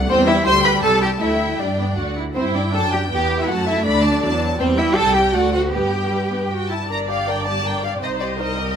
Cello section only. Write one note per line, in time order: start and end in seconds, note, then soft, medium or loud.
0.10 0.26 C4 loud
0.27 0.46 E4 loud
0.45 0.53 C5 loud
0.65 0.72 B4 loud
0.83 1.02 A4 loud
1.02 1.10 G4 medium
1.21 1.58 E4 medium
1.59 2.17 D4 medium
2.36 2.43 C4 medium
2.54 2.62 D4 medium
2.73 2.81 A4 medium
2.92 3.00 G4 medium
3.11 3.38 G4 medium
3.40 3.49 E4 medium
3.50 3.68 F#4 medium
3.67 3.85 E4 medium
3.86 4.40 D4 medium
4.59 4.77 C4 loud
4.78 4.96 E4 medium
4.96 5.15 A4 medium
5.15 5.34 G4 medium
5.34 5.52 F#4 medium
5.53 5.72 F#4 medium
5.72 6.48 G4 medium
6.89 7.98 G2 soft
8.03 8.76 C2 soft